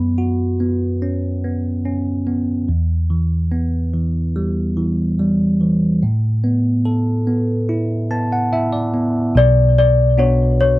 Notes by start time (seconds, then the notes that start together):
Already playing: F#2 B3 B5
0.18 F#4
0.60 B3
1.02 C#4
1.44 B3
1.85 C#4
2.27 B3
2.68 E2
3.10 E3
3.51 B3
3.93 E3
4.36 G3
4.77 E3
5.19 G3
5.61 E3
6.03 A2
6.44 B3
6.85 A4
7.27 B3
7.69 E4
8.11 B3 A5
8.32 F#5
8.53 E4 E5
8.73 D5
8.94 B3
9.35 B1 B2 D5
9.78 D5
10.18 B3 D4 F#4 C#5
10.61 C#5